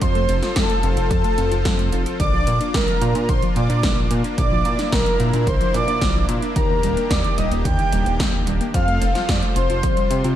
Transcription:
0.01 analog synth bass F2, supersaw synth F3 F4 A4 C5, synth arpeggio sound F3, analog polysynth C5, digital synth lead C6, kick, closed hi-hat
0.15 synth arpeggio sound A3, closed hi-hat
0.29 analog synth bass F1, synth arpeggio sound C4, closed hi-hat
0.42 synth arpeggio sound F4, snare, closed hi-hat
0.56 analog synth bass F2, synth arpeggio sound F3, analog polysynth A4, digital synth lead A5, kick, snare, closed hi-hat
0.70 synth arpeggio sound A3, closed hi-hat
0.83 analog synth bass F1, synth arpeggio sound C4, closed hi-hat
0.97 analog synth bass F1, synth arpeggio sound F4, closed hi-hat
1.11 analog synth bass F2, synth arpeggio sound F3, analog polysynth A4, digital synth lead A5, kick, closed hi-hat
1.24 synth arpeggio sound A3, closed hi-hat
1.38 analog synth bass F1, synth arpeggio sound C4, closed hi-hat
1.51 analog synth bass F1, synth arpeggio sound F4, closed hi-hat
1.65 analog synth bass F2, synth arpeggio sound F3, kick, snare, closed hi-hat
1.79 synth arpeggio sound A3, closed hi-hat
1.92 analog synth bass F1, synth arpeggio sound C4, closed hi-hat
2.06 synth arpeggio sound F4, closed hi-hat
2.20 analog synth bass A#1, synth arpeggio sound D3, supersaw synth A#3 D4 F4, analog polysynth D5, digital synth lead D6, kick, closed hi-hat
2.33 synth arpeggio sound F3
2.47 analog synth bass A#2, synth arpeggio sound A#3, closed hi-hat
2.61 synth arpeggio sound D4, closed hi-hat
2.74 analog synth bass A#1, synth arpeggio sound D3, analog polysynth A#4, digital synth lead A#5, kick, snare, closed hi-hat
2.88 synth arpeggio sound F3, closed hi-hat
3.01 analog synth bass A#2, synth arpeggio sound A#3, closed hi-hat
3.15 analog synth bass A#2, synth arpeggio sound D4, closed hi-hat
3.29 analog synth bass A#1, synth arpeggio sound D3, analog polysynth C5, digital synth lead C6, kick, closed hi-hat
3.42 synth arpeggio sound F3, closed hi-hat
3.56 analog synth bass A#2, synth arpeggio sound A#3, analog polysynth D5, digital synth lead D6, closed hi-hat
3.70 analog synth bass A#2, synth arpeggio sound D4, closed hi-hat
3.83 analog synth bass A#1, synth arpeggio sound D3, kick, snare, closed hi-hat
3.97 synth arpeggio sound F3
4.11 analog synth bass A#2, synth arpeggio sound A#3, closed hi-hat
4.24 synth arpeggio sound D4, closed hi-hat
4.38 analog synth bass A#1, synth arpeggio sound D3, supersaw synth E4, analog polysynth D5, digital synth lead D6, kick, closed hi-hat
4.51 synth arpeggio sound F3
4.65 analog synth bass A#2, synth arpeggio sound A#3, closed hi-hat
4.79 synth arpeggio sound D4, snare, closed hi-hat
4.92 analog synth bass A#1, synth arpeggio sound D3, analog polysynth A#4, digital synth lead A#5, kick, snare, closed hi-hat
5.06 synth arpeggio sound F3, closed hi-hat
5.20 analog synth bass A#2, synth arpeggio sound A#3, closed hi-hat
5.33 analog synth bass A#2, synth arpeggio sound D4, closed hi-hat
5.47 analog synth bass A#1, synth arpeggio sound D3, analog polysynth C5, digital synth lead C6, kick, closed hi-hat
5.61 synth arpeggio sound F3, closed hi-hat
5.74 analog synth bass A#2, synth arpeggio sound A#3, analog polysynth D5, digital synth lead D6, closed hi-hat
5.88 analog synth bass A#2, synth arpeggio sound D4, closed hi-hat
6.01 analog synth bass A#1, synth arpeggio sound D3, kick, snare, closed hi-hat
6.15 synth arpeggio sound F3
6.29 analog synth bass A#2, synth arpeggio sound A#3, closed hi-hat
6.42 synth arpeggio sound D4, closed hi-hat
6.56 analog synth bass D#2, synth arpeggio sound D3, supersaw synth D#3 G4, analog polysynth A#4, digital synth lead A#5, kick, closed hi-hat
6.70 synth arpeggio sound D#3
6.83 analog synth bass D#1, synth arpeggio sound G3, closed hi-hat
6.97 synth arpeggio sound A#3, closed hi-hat
7.10 analog synth bass D#2, synth arpeggio sound D3, analog polysynth D5, digital synth lead D6, kick, snare, closed hi-hat
7.24 synth arpeggio sound D#3, closed hi-hat
7.37 analog synth bass D#1, synth arpeggio sound G3, analog polysynth D#5, digital synth lead D#6, closed hi-hat
7.51 analog synth bass D#1, synth arpeggio sound A#3, closed hi-hat
7.64 analog synth bass D#2, synth arpeggio sound D3, analog polysynth G5, digital synth lead G6, kick, closed hi-hat
7.79 synth arpeggio sound D#3, closed hi-hat
7.92 analog synth bass D#1, synth arpeggio sound G3, closed hi-hat
8.06 analog synth bass D#1, synth arpeggio sound A#3, closed hi-hat
8.20 analog synth bass D#2, synth arpeggio sound D3, kick, snare, closed hi-hat
8.34 synth arpeggio sound D#3
8.47 analog synth bass D#1, synth arpeggio sound G3, closed hi-hat
8.61 synth arpeggio sound A#3, closed hi-hat
8.74 analog synth bass F2, supersaw synth F3 F4 A4 C5, synth arpeggio sound F3, analog polysynth F5, digital synth lead F6, kick, closed hi-hat
8.88 synth arpeggio sound A3, closed hi-hat
9.02 analog synth bass F1, synth arpeggio sound C4, closed hi-hat
9.15 synth arpeggio sound F4, snare, closed hi-hat
9.29 analog synth bass F2, synth arpeggio sound F3, analog polysynth D5, digital synth lead D6, kick, snare, closed hi-hat
9.42 synth arpeggio sound A3, closed hi-hat
9.56 analog synth bass F1, synth arpeggio sound C4, analog polysynth C5, digital synth lead C6, closed hi-hat
9.70 analog synth bass F1, synth arpeggio sound F4, closed hi-hat
9.83 analog synth bass C2, supersaw synth C3 G3, synth arpeggio sound F3, kick, closed hi-hat
9.97 synth arpeggio sound G3, closed hi-hat
10.11 analog synth bass C3, synth arpeggio sound C4, closed hi-hat
10.24 analog synth bass C3, synth arpeggio sound F4, closed hi-hat

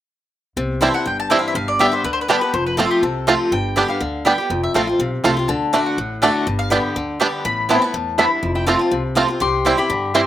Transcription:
0.57 upright bass C2, steel-string acoustic guitar C3
0.81 steel-string acoustic guitar E3 G3 C4 E4, five-string banjo G3 C4 E4, mandolin C4 E4 C5 G5 A5
0.94 steel-string acoustic guitar C4 E4, mandolin F#5
1.06 upright bass G1, steel-string acoustic guitar G2, mandolin G5
1.20 mandolin A5
1.30 steel-string acoustic guitar E3 G3 C4 E4, five-string banjo G3 C4 E4, mandolin C4 E4 C5 G5
1.39 mandolin F5
1.48 mandolin E5
1.55 upright bass G1, steel-string acoustic guitar G2, mandolin F5
1.68 mandolin D5
1.79 steel-string acoustic guitar D3 G3 B3 G4, five-string banjo G3 B3 D4, mandolin B3 G4 D5 E5 G5
1.92 steel-string acoustic guitar B3 G4, mandolin C5
2.04 upright bass D2, steel-string acoustic guitar D3, mandolin B4
2.13 mandolin C5
2.21 mandolin B4
2.28 steel-string acoustic guitar D3 G3 B3 G4, five-string banjo G3 B3 D4, mandolin B3 G4 A4 D5 G5
2.41 steel-string acoustic guitar B3 G4, mandolin B4
2.54 upright bass F1, steel-string acoustic guitar F2, mandolin C5
2.66 mandolin B4
2.77 steel-string acoustic guitar F3 A3 C4 F4, five-string banjo A3 C4 F4, mandolin C4 F4 A4 C5 A5
2.91 mandolin G4
3.03 upright bass C2, steel-string acoustic guitar C3, mandolin A4
3.27 steel-string acoustic guitar F3 A3 C4 F4, five-string banjo A3 C4 F4, mandolin C4 F4 C5 A5
3.52 upright bass G1, steel-string acoustic guitar G2, mandolin G5
3.76 steel-string acoustic guitar D3 G3 B3 G4, five-string banjo G3 B3 D4, mandolin B3 G4 D5 G5
3.88 steel-string acoustic guitar B3 G4, mandolin F5
4.01 upright bass D2, steel-string acoustic guitar D3
4.25 steel-string acoustic guitar D3 G3 B3 G4, five-string banjo G3 B3 D4, mandolin B3 G4 D5 G5
4.38 steel-string acoustic guitar B3 G4
4.50 upright bass F1, steel-string acoustic guitar F2
4.63 mandolin E5
4.74 upright bass A1, steel-string acoustic guitar F3 A3 C4 F4, five-string banjo A3 C4 F4, mandolin C4 F4 C5 F5 A5
4.87 steel-string acoustic guitar C4 F4
4.99 upright bass B1, steel-string acoustic guitar C3
5.24 upright bass C2, steel-string acoustic guitar F3 A3 C4 F4, five-string banjo A3 C4 F4, mandolin C4 F4 C5 A5
5.37 steel-string acoustic guitar C4 F4
5.48 upright bass D2, steel-string acoustic guitar D3, mandolin A5
5.73 steel-string acoustic guitar D3 A3 D4 F#4, mandolin A3 F#4 D5 A5, five-string banjo A3 D4
5.86 mandolin F#5
5.98 upright bass A1, steel-string acoustic guitar A2
6.22 steel-string acoustic guitar D3 A3 D4 F#4, mandolin A3 F#4 D5 A5, five-string banjo A3 D4
6.47 upright bass G1, steel-string acoustic guitar G2
6.59 mandolin F5
6.70 steel-string acoustic guitar D3 G3 B3 G4, five-string banjo G3 B3 D4, mandolin B3 G4 D5 G5 A5
6.96 upright bass D2, steel-string acoustic guitar D3
7.20 steel-string acoustic guitar D3 G3 B3 G4, five-string banjo G3 B3 D4, mandolin B3 G4 D5 A5
7.45 upright bass A1, steel-string acoustic guitar A2, mandolin B5
7.69 steel-string acoustic guitar E3 B3 C4 E4, five-string banjo A3 B3 E4, mandolin B3 E4 C5 A5
7.82 steel-string acoustic guitar B3 E4, mandolin A5
7.94 upright bass E2, steel-string acoustic guitar A2
8.18 steel-string acoustic guitar G2, five-string banjo A3 B3 E4, mandolin B3 E4 C5 A5 B5, resonator guitar played with a steel bar E4
8.43 upright bass F1, steel-string acoustic guitar F2
8.55 resonator guitar played with a steel bar E4, mandolin G5
8.67 steel-string acoustic guitar F3 A3 C4 F4, five-string banjo A3 C4 F4, mandolin C4 F4 C5 A5, resonator guitar played with a steel bar F4
8.79 steel-string acoustic guitar C4 F4
8.91 upright bass C2, steel-string acoustic guitar C3
9.15 steel-string acoustic guitar F3 A3 C4 F4, five-string banjo A3 C4 F4, mandolin C4 F4 C5 A5
9.28 steel-string acoustic guitar C4 F4
9.40 upright bass C2, steel-string acoustic guitar C3, resonator guitar played with a steel bar G4, mandolin C6
9.65 steel-string acoustic guitar E3 G3 C4 E4, five-string banjo G3 C4 E4, mandolin C4 E4 C5 G5
9.77 steel-string acoustic guitar C4 E4, resonator guitar played with a steel bar G4, mandolin B5
9.90 upright bass G2, steel-string acoustic guitar D3
10.14 steel-string acoustic guitar E3, five-string banjo G3 C4 E4, mandolin C4 E4 C5 G5 C6, resonator guitar played with a steel bar G4

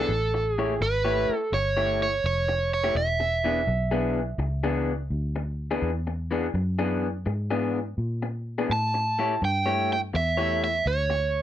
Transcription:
Already playing: overdriven electric guitar A4
0.09 fingered electric bass A1
0.34 muted clean electric guitar stroke
0.52 overdriven electric guitar G#4
0.58 clean electric guitar A3 E4 G4 C#5
0.81 fingered electric bass G#1, overdriven electric guitar B4, muted clean electric guitar stroke
1.05 clean electric guitar A3 E4 G4 C#5
1.29 muted fingered electric bass stroke
1.36 overdriven electric guitar A4
1.52 fingered electric bass G1, overdriven electric guitar C#5, muted clean electric guitar stroke
1.77 clean electric guitar A3 E4 G4 C#5
2.03 overdriven electric guitar C#5
2.24 fingered electric bass F1, overdriven electric guitar C#5
2.48 muted clean electric guitar stroke
2.74 overdriven electric guitar C#5
2.84 clean electric guitar A3 E4 G4 C#5
2.95 fingered electric bass E1, overdriven electric guitar E5
3.20 muted clean electric guitar stroke
3.44 clean electric guitar E3 B3 D4 G#4
3.67 fingered electric bass B1, muted clean electric guitar stroke
3.91 clean electric guitar E3 B3 D4 G#4
4.38 fingered electric bass C#2, muted clean electric guitar stroke
4.64 clean electric guitar E3 B3 D4 G#4
5.10 fingered electric bass D2
5.36 muted clean electric guitar stroke
5.71 clean electric guitar E3 B3 D4 G#4
5.82 fingered electric bass E2
6.07 muted clean electric guitar stroke
6.31 clean electric guitar E3 B3 D4 G#4
6.54 fingered electric bass F#2, muted clean electric guitar stroke
6.79 clean electric guitar E3 B3 D4 G#4
7.26 fingered electric bass G#2, muted clean electric guitar stroke
7.51 clean electric guitar E3 B3 D4 G#4
7.98 fingered electric bass A#2
8.22 muted clean electric guitar stroke
8.58 clean electric guitar E3 B3 D4 G#4
8.70 fingered electric bass A2, overdriven electric guitar A5
8.94 muted clean electric guitar stroke
9.19 clean electric guitar A3 E4 G4 C#5
9.42 fingered electric bass G2, overdriven electric guitar G5, muted clean electric guitar stroke
9.66 clean electric guitar A3 E4 G4 C#5
9.93 overdriven electric guitar G5
10.13 fingered electric bass E2, overdriven electric guitar E5, muted clean electric guitar stroke
10.37 clean electric guitar A3 E4 G4 C#5
10.64 overdriven electric guitar E5
10.86 fingered electric bass D2, overdriven electric guitar C#5
11.10 muted clean electric guitar stroke

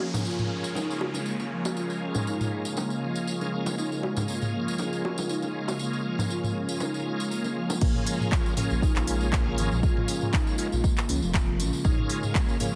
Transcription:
Already playing: ambient pad C#3 G#3 A#3 F4, tonewheel organ C#4 F4 G#4 A#4, downlifter
0.00 marimba F3
0.14 mid tom, tambourine, low bongo
0.25 marimba F4, tambourine
0.39 mid tom, tambourine
0.51 marimba C#4
0.64 tambourine
0.75 marimba D#4, tambourine, low bongo
0.91 tambourine
1.01 marimba G#3, high bongo
1.14 tambourine, low bongo
1.26 marimba A#3, tambourine
1.40 tambourine, low bongo
1.51 marimba F3
1.65 tambourine, high bongo
1.77 marimba F4, tambourine
1.90 tambourine
2.02 marimba C#4
2.15 mid tom, tambourine, low bongo
2.27 marimba D#4, tambourine
2.40 mid tom, tambourine
2.52 marimba G#3
2.65 tambourine
2.77 marimba A#3, tambourine, low bongo
2.90 tambourine
3.03 marimba F3
3.15 tambourine
3.27 marimba F4, tambourine
3.41 tambourine, low bongo
3.53 marimba C#4
3.66 tambourine, low bongo
3.78 tonewheel organ C#4 F4 G#4 A#4, marimba D#4, tambourine
3.92 tambourine
4.03 marimba G#3, high bongo
4.17 mid tom, tambourine, low bongo
4.28 marimba A#3, tambourine
4.42 mid tom, tambourine
4.54 marimba F3
4.68 tambourine
4.78 marimba F4, tambourine, low bongo
4.93 tambourine
5.04 marimba C#4, high bongo
5.18 tambourine, low bongo
5.29 marimba D#4, tambourine
5.42 tambourine, low bongo
5.55 marimba G#3
5.68 tambourine, high bongo
5.79 marimba A#3, tambourine
5.93 tambourine
6.05 marimba F3
6.18 mid tom, tambourine, low bongo
6.30 marimba F4, tambourine
6.44 mid tom, tambourine
6.55 marimba C#4
6.69 tambourine
6.80 marimba D#4, tambourine, low bongo
6.94 tambourine
7.06 marimba G#3
7.20 tambourine
7.31 marimba A#3, tambourine
7.44 tambourine, low bongo
7.56 marimba F3
7.70 tambourine, low bongo
7.81 detuned saw bass A#1, ambient pad C#3 G#3 A#3 F4, marimba A#3, tonewheel organ C#4 F4 G#4 A#4, kick, tambourine, crash
7.95 mid tom
8.07 marimba F3, open hi-hat, tambourine
8.20 mid tom, tambourine
8.32 marimba F4, kick, clap, tambourine
8.46 tambourine
8.57 marimba C#4, tonewheel organ C#4 F4 G#4 A#4, mid tom, open hi-hat, tambourine
8.70 detuned saw bass A#1, tambourine
8.82 marimba D#4, kick, tambourine
8.96 detuned saw bass A#1, clap, tambourine
9.07 detuned saw bass A#1, marimba G#3, open hi-hat, tambourine
9.21 tambourine
9.32 marimba A#3, kick, clap, tambourine
9.58 detuned saw bass G#1, marimba F3, open hi-hat, tambourine
9.72 detuned saw bass A#1, tambourine
9.83 tonewheel organ C#4 F4 G#4 A#4, marimba F4, kick, tambourine
9.97 mid tom
10.08 marimba C#4, open hi-hat, tambourine
10.21 mid tom, tambourine
10.33 marimba D#4, kick, clap, tambourine
10.47 tambourine
10.58 marimba G#3, tonewheel organ C#4 F4 G#4 A#4, open hi-hat, tambourine
10.72 detuned saw bass A#1, tambourine
10.84 marimba A#3, kick, tambourine
10.97 clap, tambourine
11.09 detuned saw bass C#2, marimba F3, open hi-hat, tambourine
11.23 detuned saw bass F1, tambourine
11.34 marimba F4, kick, clap, tambourine
11.60 detuned saw bass A#1, marimba C#4, open hi-hat, tambourine
11.73 tambourine
11.85 detuned saw bass A#1, tonewheel organ C#4 F4 G#4 A#4, marimba D#4, ambient pad D#4, kick, tambourine
11.98 mid tom
12.09 marimba G#3, open hi-hat, tambourine
12.23 mid tom, tambourine
12.35 marimba A#3, kick, clap, tambourine
12.49 tambourine
12.60 marimba F3, tonewheel organ C#4 F4 G#4 A#4, mid tom, open hi-hat, tambourine

